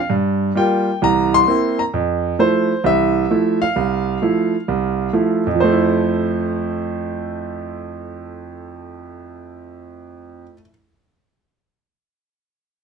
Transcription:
0, 0, Header, 1, 2, 480
1, 0, Start_track
1, 0, Key_signature, -1, "major"
1, 0, Tempo, 456969
1, 118, Time_signature, 4, 2, 24, 8
1, 13486, End_track
2, 0, Start_track
2, 0, Title_t, "Grand piano"
2, 0, Program_c, 0, 0
2, 0, Note_on_c, 0, 77, 72
2, 102, Note_on_c, 0, 43, 64
2, 115, Note_off_c, 0, 77, 0
2, 525, Note_off_c, 0, 43, 0
2, 582, Note_on_c, 0, 55, 55
2, 583, Note_on_c, 0, 58, 45
2, 590, Note_on_c, 0, 65, 61
2, 602, Note_on_c, 0, 79, 74
2, 926, Note_off_c, 0, 55, 0
2, 927, Note_off_c, 0, 58, 0
2, 930, Note_off_c, 0, 65, 0
2, 1069, Note_on_c, 0, 52, 66
2, 1072, Note_on_c, 0, 36, 67
2, 1090, Note_on_c, 0, 82, 90
2, 1092, Note_off_c, 0, 79, 0
2, 1411, Note_on_c, 0, 84, 104
2, 1414, Note_off_c, 0, 82, 0
2, 1488, Note_off_c, 0, 52, 0
2, 1490, Note_off_c, 0, 36, 0
2, 1550, Note_on_c, 0, 58, 55
2, 1554, Note_on_c, 0, 60, 49
2, 1563, Note_on_c, 0, 64, 58
2, 1882, Note_on_c, 0, 82, 73
2, 1889, Note_off_c, 0, 58, 0
2, 1891, Note_off_c, 0, 60, 0
2, 1896, Note_off_c, 0, 64, 0
2, 1897, Note_off_c, 0, 84, 0
2, 1934, Note_off_c, 0, 82, 0
2, 2034, Note_on_c, 0, 41, 63
2, 2450, Note_off_c, 0, 41, 0
2, 2507, Note_on_c, 0, 53, 50
2, 2512, Note_on_c, 0, 57, 49
2, 2513, Note_on_c, 0, 64, 59
2, 2519, Note_on_c, 0, 72, 83
2, 2847, Note_off_c, 0, 53, 0
2, 2849, Note_off_c, 0, 57, 0
2, 2850, Note_off_c, 0, 64, 0
2, 2984, Note_on_c, 0, 36, 70
2, 2984, Note_on_c, 0, 52, 68
2, 3008, Note_on_c, 0, 76, 90
2, 3009, Note_off_c, 0, 72, 0
2, 3404, Note_off_c, 0, 36, 0
2, 3404, Note_off_c, 0, 52, 0
2, 3470, Note_on_c, 0, 53, 49
2, 3474, Note_on_c, 0, 57, 49
2, 3477, Note_on_c, 0, 64, 60
2, 3798, Note_on_c, 0, 77, 88
2, 3808, Note_off_c, 0, 53, 0
2, 3810, Note_off_c, 0, 57, 0
2, 3811, Note_off_c, 0, 64, 0
2, 3824, Note_off_c, 0, 76, 0
2, 3950, Note_on_c, 0, 36, 66
2, 4367, Note_off_c, 0, 36, 0
2, 4431, Note_on_c, 0, 53, 52
2, 4432, Note_on_c, 0, 57, 44
2, 4440, Note_on_c, 0, 64, 55
2, 4768, Note_off_c, 0, 53, 0
2, 4768, Note_off_c, 0, 57, 0
2, 4772, Note_off_c, 0, 64, 0
2, 4919, Note_on_c, 0, 36, 65
2, 5331, Note_off_c, 0, 36, 0
2, 5390, Note_on_c, 0, 57, 46
2, 5394, Note_on_c, 0, 53, 52
2, 5396, Note_on_c, 0, 64, 51
2, 5672, Note_off_c, 0, 77, 0
2, 5727, Note_off_c, 0, 57, 0
2, 5729, Note_off_c, 0, 53, 0
2, 5730, Note_off_c, 0, 64, 0
2, 5742, Note_on_c, 0, 41, 64
2, 5830, Note_on_c, 0, 53, 57
2, 5887, Note_on_c, 0, 72, 75
2, 5920, Note_on_c, 0, 57, 60
2, 6009, Note_on_c, 0, 64, 66
2, 10952, Note_off_c, 0, 41, 0
2, 11040, Note_off_c, 0, 53, 0
2, 11054, Note_off_c, 0, 72, 0
2, 11129, Note_off_c, 0, 57, 0
2, 11218, Note_off_c, 0, 64, 0
2, 13486, End_track
0, 0, End_of_file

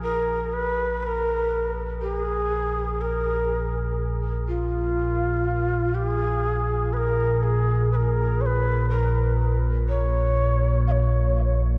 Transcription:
0, 0, Header, 1, 4, 480
1, 0, Start_track
1, 0, Tempo, 983607
1, 21, Time_signature, 4, 2, 24, 8
1, 5750, End_track
2, 0, Start_track
2, 0, Title_t, "Shakuhachi"
2, 0, Program_c, 0, 77
2, 12, Note_on_c, 0, 70, 81
2, 257, Note_on_c, 0, 71, 85
2, 264, Note_off_c, 0, 70, 0
2, 501, Note_off_c, 0, 71, 0
2, 501, Note_on_c, 0, 71, 80
2, 520, Note_on_c, 0, 70, 87
2, 524, Note_off_c, 0, 71, 0
2, 850, Note_off_c, 0, 70, 0
2, 982, Note_on_c, 0, 68, 82
2, 1470, Note_on_c, 0, 70, 69
2, 1477, Note_off_c, 0, 68, 0
2, 1826, Note_off_c, 0, 70, 0
2, 2187, Note_on_c, 0, 65, 80
2, 2903, Note_on_c, 0, 68, 86
2, 2910, Note_off_c, 0, 65, 0
2, 3384, Note_on_c, 0, 71, 75
2, 3391, Note_off_c, 0, 68, 0
2, 3402, Note_on_c, 0, 70, 81
2, 3407, Note_off_c, 0, 71, 0
2, 3625, Note_on_c, 0, 68, 78
2, 3632, Note_off_c, 0, 70, 0
2, 3862, Note_off_c, 0, 68, 0
2, 3865, Note_on_c, 0, 71, 76
2, 3883, Note_on_c, 0, 70, 83
2, 3888, Note_off_c, 0, 71, 0
2, 4105, Note_on_c, 0, 73, 73
2, 4112, Note_off_c, 0, 70, 0
2, 4129, Note_on_c, 0, 71, 79
2, 4134, Note_off_c, 0, 73, 0
2, 4339, Note_off_c, 0, 71, 0
2, 4342, Note_on_c, 0, 70, 76
2, 4670, Note_off_c, 0, 70, 0
2, 4825, Note_on_c, 0, 73, 90
2, 5283, Note_off_c, 0, 73, 0
2, 5306, Note_on_c, 0, 77, 65
2, 5326, Note_on_c, 0, 73, 71
2, 5331, Note_off_c, 0, 77, 0
2, 5644, Note_off_c, 0, 73, 0
2, 5750, End_track
3, 0, Start_track
3, 0, Title_t, "Singing bowl"
3, 0, Program_c, 1, 14
3, 0, Note_on_c, 1, 53, 57
3, 0, Note_on_c, 1, 82, 53
3, 5750, Note_off_c, 1, 53, 0
3, 5750, Note_off_c, 1, 82, 0
3, 5750, End_track
4, 0, Start_track
4, 0, Title_t, "Synth drone"
4, 0, Program_c, 2, 95
4, 0, Note_on_c, 2, 34, 68
4, 0, Note_on_c, 2, 46, 63
4, 5750, Note_off_c, 2, 34, 0
4, 5750, Note_off_c, 2, 46, 0
4, 5750, End_track
0, 0, End_of_file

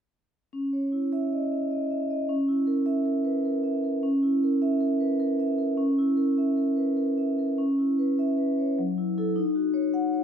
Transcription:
0, 0, Header, 1, 2, 480
1, 0, Start_track
1, 0, Tempo, 584226
1, 441, Time_signature, 3, 2, 24, 8
1, 4754, Tempo, 601202
1, 7154, Tempo, 576923
1, 8356, End_track
2, 0, Start_track
2, 0, Title_t, "Vibraphone"
2, 0, Program_c, 0, 11
2, 435, Note_on_c, 0, 61, 45
2, 601, Note_on_c, 0, 73, 31
2, 615, Control_c, 0, 64, 127
2, 758, Note_on_c, 0, 64, 35
2, 861, Note_off_c, 0, 73, 0
2, 925, Note_on_c, 0, 76, 48
2, 1019, Note_off_c, 0, 64, 0
2, 1089, Note_on_c, 0, 75, 33
2, 1181, Note_off_c, 0, 76, 0
2, 1244, Note_on_c, 0, 76, 30
2, 1343, Note_off_c, 0, 75, 0
2, 1405, Note_off_c, 0, 76, 0
2, 1405, Note_on_c, 0, 75, 36
2, 1566, Note_on_c, 0, 76, 37
2, 1663, Note_off_c, 0, 75, 0
2, 1728, Note_on_c, 0, 75, 36
2, 1824, Note_off_c, 0, 76, 0
2, 1852, Note_off_c, 0, 61, 0
2, 1883, Note_on_c, 0, 61, 49
2, 1888, Note_off_c, 0, 75, 0
2, 1903, Control_c, 0, 64, 0
2, 2035, Control_c, 0, 64, 127
2, 2039, Note_on_c, 0, 64, 33
2, 2194, Note_on_c, 0, 70, 39
2, 2297, Note_off_c, 0, 64, 0
2, 2350, Note_on_c, 0, 76, 48
2, 2455, Note_off_c, 0, 70, 0
2, 2510, Note_on_c, 0, 70, 38
2, 2613, Note_off_c, 0, 76, 0
2, 2668, Note_on_c, 0, 71, 37
2, 2772, Note_off_c, 0, 70, 0
2, 2834, Note_off_c, 0, 71, 0
2, 2836, Note_on_c, 0, 70, 45
2, 2987, Note_on_c, 0, 76, 40
2, 3091, Note_off_c, 0, 70, 0
2, 3154, Note_on_c, 0, 70, 39
2, 3244, Note_off_c, 0, 76, 0
2, 3278, Note_off_c, 0, 61, 0
2, 3311, Note_on_c, 0, 61, 52
2, 3312, Note_off_c, 0, 70, 0
2, 3328, Control_c, 0, 64, 0
2, 3443, Control_c, 0, 64, 127
2, 3474, Note_on_c, 0, 64, 40
2, 3645, Note_on_c, 0, 70, 43
2, 3727, Note_off_c, 0, 64, 0
2, 3795, Note_on_c, 0, 76, 58
2, 3892, Note_off_c, 0, 70, 0
2, 3948, Note_on_c, 0, 70, 42
2, 4047, Note_off_c, 0, 76, 0
2, 4111, Note_on_c, 0, 71, 36
2, 4205, Note_off_c, 0, 70, 0
2, 4271, Note_off_c, 0, 71, 0
2, 4271, Note_on_c, 0, 70, 43
2, 4433, Note_on_c, 0, 76, 46
2, 4527, Note_off_c, 0, 70, 0
2, 4587, Note_on_c, 0, 70, 43
2, 4688, Note_off_c, 0, 76, 0
2, 4717, Note_off_c, 0, 61, 0
2, 4744, Note_on_c, 0, 61, 53
2, 4766, Control_c, 0, 64, 0
2, 4843, Note_off_c, 0, 70, 0
2, 4912, Control_c, 0, 64, 127
2, 4912, Note_on_c, 0, 64, 39
2, 5059, Note_on_c, 0, 70, 39
2, 5162, Note_off_c, 0, 64, 0
2, 5227, Note_on_c, 0, 76, 37
2, 5316, Note_off_c, 0, 70, 0
2, 5380, Note_on_c, 0, 70, 38
2, 5480, Note_off_c, 0, 76, 0
2, 5536, Note_on_c, 0, 71, 35
2, 5639, Note_off_c, 0, 70, 0
2, 5698, Note_on_c, 0, 70, 41
2, 5701, Note_off_c, 0, 71, 0
2, 5862, Note_on_c, 0, 76, 36
2, 5968, Note_off_c, 0, 70, 0
2, 6033, Note_on_c, 0, 70, 32
2, 6132, Note_off_c, 0, 76, 0
2, 6165, Note_off_c, 0, 61, 0
2, 6189, Note_on_c, 0, 61, 46
2, 6198, Note_off_c, 0, 70, 0
2, 6214, Control_c, 0, 64, 0
2, 6324, Control_c, 0, 64, 127
2, 6353, Note_on_c, 0, 64, 35
2, 6513, Note_on_c, 0, 71, 37
2, 6610, Note_off_c, 0, 64, 0
2, 6673, Note_on_c, 0, 76, 49
2, 6770, Note_off_c, 0, 71, 0
2, 6824, Note_on_c, 0, 71, 40
2, 6930, Note_off_c, 0, 76, 0
2, 6991, Note_on_c, 0, 73, 36
2, 7084, Note_off_c, 0, 71, 0
2, 7118, Note_off_c, 0, 61, 0
2, 7149, Note_on_c, 0, 54, 50
2, 7150, Note_off_c, 0, 73, 0
2, 7169, Control_c, 0, 64, 0
2, 7306, Control_c, 0, 64, 127
2, 7310, Note_on_c, 0, 64, 38
2, 7464, Note_off_c, 0, 64, 0
2, 7474, Note_on_c, 0, 64, 39
2, 7477, Note_on_c, 0, 69, 54
2, 7616, Note_off_c, 0, 54, 0
2, 7616, Note_off_c, 0, 64, 0
2, 7618, Note_off_c, 0, 69, 0
2, 7624, Note_on_c, 0, 63, 52
2, 7646, Control_c, 0, 64, 0
2, 7774, Control_c, 0, 64, 127
2, 7787, Note_on_c, 0, 66, 39
2, 7940, Note_on_c, 0, 73, 46
2, 8044, Note_off_c, 0, 66, 0
2, 8105, Note_on_c, 0, 78, 61
2, 8202, Note_off_c, 0, 73, 0
2, 8268, Note_on_c, 0, 73, 44
2, 8356, Note_off_c, 0, 63, 0
2, 8356, Note_off_c, 0, 73, 0
2, 8356, Note_off_c, 0, 78, 0
2, 8356, End_track
0, 0, End_of_file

